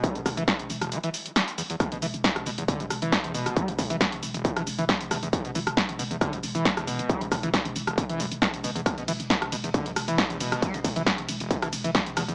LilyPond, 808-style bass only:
\new Staff \with { instrumentName = "808-style bass" } { \clef bass \time 4/4 \key e \minor \tempo 4 = 136 r16 e,,16 e,,16 e,,16 r16 e,,16 e,,16 e,,16 r2 | r16 e,,16 e,,16 e,,16 r16 e,,16 e,,16 e,,16 r16 e,,16 e,,16 e,,16 r16 e,,16 e,,16 e,,16 | r16 e,,16 e,,16 e,,16 r16 e,,16 e,,16 e,,16 r16 e,,16 e,,16 e,,16 r16 e,,16 e,,16 e,,16 | r16 e,,16 e,,16 e,,16 r16 e,,16 e,,16 e,,16 r16 e,,16 e,,16 e,,16 r16 e,,16 e,,16 e,,16 |
r16 e,,16 e,,16 e,,16 r16 e,,16 e,,16 e,,16 r16 e,,16 e,,16 e,,16 r16 e,,16 e,,16 e,,16 | r16 e,,16 e,,16 e,,16 r16 e,,16 e,,16 e,,16 r16 e,,16 e,,16 e,,16 r16 e,,16 e,,16 e,,16 | r16 e,,16 e,,16 e,,16 r16 e,,16 e,,16 e,,16 r16 e,,16 e,,16 e,,16 r16 e,,16 e,,16 e,,16 | }